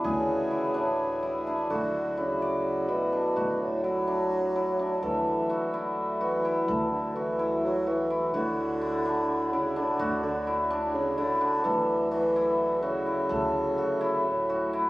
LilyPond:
<<
  \new Staff \with { instrumentName = "Hammered dulcimer" } { \time 7/8 \key d \lydian \tempo 4 = 127 gis'4 e'8 d'4 e'8 d'8 | fis'4 e'8 d''4 e'8 d'8 | fis'4 e'8 d'4 e'8 d'8 | a'4 fis'8 e'4 fis'8 e'8 |
a'4 fis'8 e'4 fis'8 e'8 | fis'4 e'8 d'4 e'8 d'8 | fis'4 e'8 d'4 e'8 d'8 | a'4 fis'8 e'4 fis'8 e'8 |
a'4 fis'8 e'4 fis'8 e'8 | }
  \new Staff \with { instrumentName = "Harmonium" } { \time 7/8 \key d \lydian <e e' fis' gis' cis''>2.~ <e e' fis' gis' cis''>8 | <fis a fis'>2.~ <fis a fis'>8~ | <fis a fis'>2.~ <fis a fis'>8 | <fis a e'>2.~ <fis a e'>8~ |
<fis a e'>2.~ <fis a e'>8 | <d fis' cis''>2.~ <d fis' cis''>8~ | <d fis' cis''>2.~ <d fis' cis''>8 | <fis a e'>2.~ <fis a e'>8~ |
<fis a e'>2.~ <fis a e'>8 | }
  \new Staff \with { instrumentName = "Bassoon" } { \clef bass \time 7/8 \key d \lydian cis4. a,4. r8 | d4 cis4. b,4~ | b,8 a,8 fis2~ fis8 | e2 r8 e4~ |
e8 d8 e4 fis8 e4 | d2~ d8 cis8 d8~ | d8 d4 r8 cis8 d4 | e4 e4. cis4~ |
cis2 a,4 r8 | }
  \new Staff \with { instrumentName = "Upright bass" } { \clef bass \time 7/8 \key d \lydian d,2.~ d,8 | d,2.~ d,8 | d,2.~ d,8 | d,2.~ d,8 |
d,2.~ d,8 | d,2.~ d,8 | d,2.~ d,8 | d,2.~ d,8 |
d,2.~ d,8 | }
>>